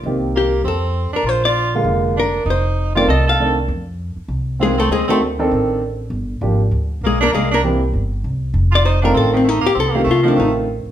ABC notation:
X:1
M:4/4
L:1/8
Q:"Swing" 1/4=198
K:Fmix
V:1 name="Hollow-body jazz guitar"
z2 G2 A3 B | c d2 z3 B2 | c3 d e f2 z | z6 [_A,_A] [=A,=A] |
[_A,_A] [=A,=A] z6 | z6 [_A,_A] [B,B] | [_A,_A] [B,B] z6 | z d c B A C E G |
A G F D E z3 |]
V:2 name="Grand piano"
[E,B,CG]3 z4 z | z3 [D,_A,B,F]3 z2 | z3 [E,A,CF] z2 [E,A,CD] z | z6 [E,A,CF] z |
z [E,CD^F] z [E,CDA]3 z2 | z2 [F,B,DG] z4 z | z2 [=E,B,CG] z4 z | z3 [E,A,CF]3 z2 |
z [E,A,CF] z [E,A,CF]3 z2 |]
V:3 name="Tenor saxophone"
z2 B,2 C3 D | F F2 z3 D2 | E3 F A A2 z | z6 C C |
C C z6 | z6 B, D | B, D z6 | z F E D C E, A, B, |
C B, A, F, A, z3 |]
V:4 name="Upright bass" clef=bass
C,,4 F,,3 z | B,,,4 F,,,4 | F,,,4 C,,4 | F,,3 z C,,4 |
D,,4 A,,,4 | G,,,2 _A,,,2 D,,2 =B,,,2 | C,,4 G,,,2 C,,2 | F,,,4 A,,,3 z |
C,,2 C,2 A,,,3 z |]